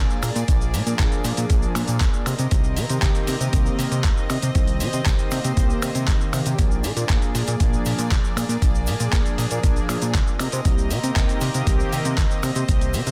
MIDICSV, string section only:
0, 0, Header, 1, 2, 480
1, 0, Start_track
1, 0, Tempo, 508475
1, 457, Time_signature, 4, 2, 24, 8
1, 12376, End_track
2, 0, Start_track
2, 0, Title_t, "String section"
2, 0, Program_c, 0, 48
2, 0, Note_on_c, 0, 58, 83
2, 0, Note_on_c, 0, 68, 75
2, 0, Note_on_c, 0, 74, 94
2, 2103, Note_off_c, 0, 58, 0
2, 2103, Note_off_c, 0, 68, 0
2, 2103, Note_off_c, 0, 74, 0
2, 2134, Note_on_c, 0, 75, 93
2, 2135, Note_on_c, 0, 60, 82
2, 2136, Note_on_c, 0, 70, 77
2, 4037, Note_off_c, 0, 70, 0
2, 4059, Note_on_c, 0, 72, 78
2, 6178, Note_off_c, 0, 60, 0
2, 6178, Note_off_c, 0, 75, 0
2, 6197, Note_off_c, 0, 72, 0
2, 6216, Note_on_c, 0, 58, 83
2, 6217, Note_on_c, 0, 74, 93
2, 6218, Note_on_c, 0, 68, 78
2, 9780, Note_off_c, 0, 58, 0
2, 9781, Note_off_c, 0, 68, 0
2, 9781, Note_off_c, 0, 74, 0
2, 9818, Note_on_c, 0, 60, 82
2, 9818, Note_on_c, 0, 70, 79
2, 9819, Note_on_c, 0, 75, 95
2, 11718, Note_off_c, 0, 70, 0
2, 11734, Note_on_c, 0, 72, 77
2, 12376, Note_off_c, 0, 60, 0
2, 12376, Note_off_c, 0, 72, 0
2, 12376, Note_off_c, 0, 75, 0
2, 12376, End_track
0, 0, End_of_file